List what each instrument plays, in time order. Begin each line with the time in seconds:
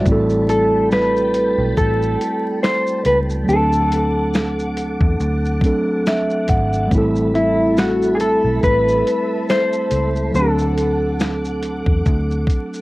Already playing: tine electric piano F#4 D5, string machine A4 A5
0.01 tine electric piano G3 A3
0.06 fingered electric bass A1, tine electric piano C4 E4, string machine G5 B5, kick, shaker
0.12 tine electric piano A4
0.29 shaker
0.49 clean electric guitar A4, closed hi-hat, shaker
0.91 clean electric guitar B4, finger snap, snare, shaker
1.16 shaker
1.34 closed hi-hat, shaker
1.58 fingered electric bass B1
1.77 fingered electric bass A1, clean electric guitar A4, kick, shaker
2.02 shaker
2.21 closed hi-hat, shaker
2.63 clean electric guitar C5, finger snap, snare, shaker
2.87 shaker
3.05 fingered electric bass C#2, clean electric guitar B4, closed hi-hat, shaker
3.30 shaker
3.44 tine electric piano F#3 A3
3.48 fingered electric bass D2, tine electric piano C4 D4, clean electric guitar A4, string machine F#5 D6, shaker
3.54 tine electric piano A4
3.72 shaker
3.92 closed hi-hat, shaker
4.34 finger snap, snare, shaker
4.59 shaker
4.77 closed hi-hat, shaker
5.01 fingered electric bass E2, kick
5.20 fingered electric bass D2, shaker
5.45 shaker
5.61 tine electric piano F#3 A3 C4 D4, kick, closed hi-hat, shaker
5.66 tine electric piano A4
6.06 tine electric piano E5, finger snap, snare, shaker
6.30 shaker
6.48 fingered electric bass G#1, tine electric piano F#5, kick, closed hi-hat, shaker
6.73 shaker
6.87 tine electric piano G3 A3
6.91 fingered electric bass A1, tine electric piano C4 E4, string machine A4 E5 B5, kick, shaker
6.98 tine electric piano A4
7.16 shaker
7.35 clean electric guitar E4, closed hi-hat, shaker
7.77 clean electric guitar F#4, finger snap, snare, shaker
8.02 shaker
8.15 clean electric guitar G#4
8.20 clean electric guitar A4, closed hi-hat, shaker
8.44 fingered electric bass B1
8.63 fingered electric bass A1, clean electric guitar B4, kick, shaker
8.88 shaker
9.07 closed hi-hat, shaker
9.49 clean electric guitar C5, finger snap, snare, shaker
9.73 shaker
9.91 fingered electric bass C#2, closed hi-hat, shaker
10.15 shaker
10.31 fingered electric bass D2, tine electric piano F#3 A3, string machine F#5 D6, shaker
10.35 tine electric piano C4 D4, clean electric guitar A4
10.42 tine electric piano G4
10.48 tine electric piano A4
10.58 shaker
10.78 closed hi-hat, shaker
11.20 finger snap, snare, shaker
11.45 shaker
11.63 closed hi-hat, shaker
11.86 fingered electric bass E2, kick
12.06 fingered electric bass D2, kick, shaker
12.31 shaker
12.47 kick, closed hi-hat, shaker
12.73 shaker